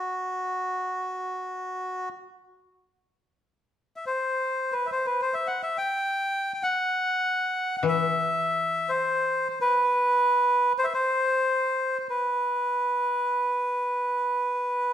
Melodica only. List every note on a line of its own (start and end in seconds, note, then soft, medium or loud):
0.00 2.09 F#4 soft
3.96 4.05 E5 soft
4.06 4.74 C5 medium
4.72 4.87 B4 medium
4.86 4.90 E5 soft
4.92 5.06 C5 medium
5.06 5.21 B4 medium
5.22 5.35 C5 medium
5.34 5.47 E5 medium
5.47 5.62 F#5 medium
5.63 5.77 E5 medium
5.78 6.53 G5 medium
6.54 6.63 G5 medium
6.63 7.76 F#5 medium
7.78 7.86 F#5 medium
7.88 8.91 E5 medium
8.89 9.48 C5 medium
9.50 9.59 C5 soft
9.61 10.73 B4 medium
10.78 10.86 C5 medium
10.84 10.93 E5 medium
10.94 11.98 C5 medium
11.99 12.07 C5 soft
12.10 14.93 B4 medium